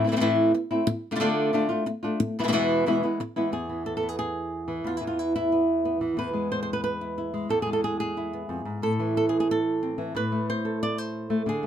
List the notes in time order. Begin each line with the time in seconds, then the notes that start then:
0.04 E3 A3 C4 E4
0.09 E3 A3 C4 E4
0.13 E3 A3 C4 E4
0.18 A2 E3 A3 C4 E4
0.22 E4
0.54 muted nylon-string guitar stroke
0.71 A3 C4 E4
0.87 muted nylon-string guitar stroke
1.11 D3 A3 D4 F4
1.16 D3 A3 D4 F4
1.20 D3 A3 D4 F4
1.53 D3 A3 D4 F4
1.69 A3 D4 F4
1.86 muted nylon-string guitar stroke
2.03 A3 D4 F4
2.20 muted nylon-string guitar stroke
2.39 B2 E3 G#3 B3 E4
2.43 B2 E3 G#3 B3 E4
2.48 B2 E3 G#3 B3 E4
2.52 E2 B2 E3 G#3 B3 E4
2.86 E2 B2 E3 G#3 B3 E4
3.03 E3 G#3 B3 E4
3.20 muted nylon-string guitar stroke
3.36 E3 G#3 B3 E4
3.52 E2 G#4
3.69 E3
3.86 A4
3.97 A4
4.03 B3
4.09 G#4
4.19 G#4
4.68 E3
4.84 E2 F4
4.97 E4
5.01 E3
5.07 F4
5.19 E4
5.36 E4
5.52 B3
5.85 B3
6.01 E3
6.17 E2 B4
6.34 G#3
6.52 C5
6.63 C5
6.73 B4
6.84 B4
7.01 E4
7.18 E4
7.34 G#3
7.49 E2 A4
7.62 G#4
7.67 G#3
7.73 A4
7.84 G#4
8.00 G#4
8.17 E4
8.33 B3
8.49 F2
8.65 G#2
8.82 A2 A4
8.99 E3
9.17 A4
9.29 G#4
9.40 G#4
9.51 A4
9.83 C4
9.98 E3
10.15 A2 B4
10.32 A3
10.50 C5
10.65 A4
10.83 D5
10.98 C5
11.30 A3
11.46 D3 G#4
11.63 A3